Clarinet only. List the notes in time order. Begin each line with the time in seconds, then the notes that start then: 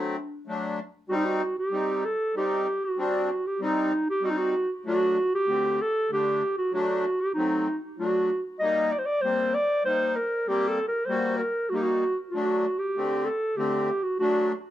Already playing: D4
1.09 F#4
1.16 D#4
1.25 F#4
1.59 G4
2.05 A4
2.37 G4
2.84 F#4
3.00 F#4
3.46 G4
3.63 D#4
4.10 G4
4.25 F#4
4.30 D#4
4.38 F#4
4.87 F#4
5.35 G4
5.81 A4
6.13 G4
6.58 F#4
6.74 F#4
7.20 G4
7.34 D#4
7.98 F#4
8.59 D#5
8.92 D5
8.98 C5
9.05 D5
9.21 C5
9.54 D5
9.85 C5
10.16 A#4
10.48 G4
10.68 A4
10.88 A#4
11.06 C5
11.37 A#4
11.69 F#4
11.75 G4
11.82 F#4
12.29 F#4
12.79 G4
13.25 A4
13.56 G4
14.03 F#4
14.19 F#4